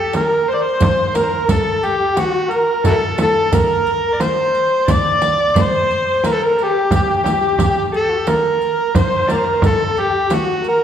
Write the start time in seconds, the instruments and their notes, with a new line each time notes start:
Already playing: kamancheh G4, harmonica A4
0.13 kamancheh A#4, harmonica A#4, riq, tombak tek, frame drum
0.48 kamancheh C5, harmonica C5
0.54 harmonica D5
0.62 kamancheh C5, harmonica C5
0.80 riq, tombak dum, frame drum
1.15 kamancheh A#4, harmonica A#4, riq, tombak tek, frame drum
1.23 kamancheh C5
1.29 kamancheh A#4
1.49 kamancheh A4, harmonica A4, riq, tombak dum, frame drum
1.76 kamancheh A4
1.83 kamancheh G4, harmonica G4, riq
2.17 kamancheh F#4, harmonica F#4, riq, tombak tek, frame drum
2.50 kamancheh A#4, harmonica A#4, riq
2.84 harmonica E4 F#4 A4, kamancheh A4, riq, tombak dum, frame drum
2.90 kamancheh A#4
2.97 kamancheh A4
3.17 kamancheh A4, riq, tombak tek, frame drum
3.22 harmonica A4
3.51 kamancheh A#4, harmonica A#4, riq, tombak dum, frame drum
3.87 riq
4.13 kamancheh D5
4.20 kamancheh C5, harmonica C5, riq, tombak tek, frame drum
4.55 riq
4.87 kamancheh D5, riq, tombak dum, frame drum
4.92 harmonica D5
5.22 riq, tombak tek, frame drum
5.39 tombak ka
5.55 kamancheh C5, riq, tombak dum, frame drum
5.61 harmonica C5
5.90 riq, tombak ka
6.23 kamancheh A#4, harmonica A#4, riq, tombak tek, frame drum
6.33 harmonica A4
6.43 harmonica A#4
6.58 kamancheh G4, riq, tombak ka
6.64 harmonica G4
6.91 kamancheh G4, riq, tombak dum, frame drum
6.96 harmonica G4
7.03 harmonica G4
7.10 harmonica G4
7.17 harmonica G4
7.23 harmonica G4, riq, tombak tek, frame drum
7.33 harmonica G4
7.40 harmonica G4
7.47 harmonica G4
7.57 harmonica G4, riq, tombak dum, frame drum
7.64 harmonica G4
7.70 harmonica G4
7.77 harmonica G4
7.92 kamancheh A4, riq
7.96 harmonica A4
8.01 kamancheh G4
8.09 kamancheh F#4
8.18 kamancheh G4
8.27 kamancheh A#4, harmonica A#4, riq, tombak tek, frame drum
8.61 riq
8.95 kamancheh C5, harmonica C5, riq, frame drum, tombak dum
9.27 harmonica A#4, kamancheh D5, riq, tombak tek, frame drum
9.36 kamancheh C5
9.45 kamancheh A#4
9.54 kamancheh C5
9.62 kamancheh A4, riq, frame drum, tombak dum
9.67 harmonica A4
9.97 kamancheh G4, harmonica G4, riq
10.30 kamancheh F#4, harmonica F#4, riq, tombak tek, frame drum
10.64 kamancheh A#4, harmonica A#4, riq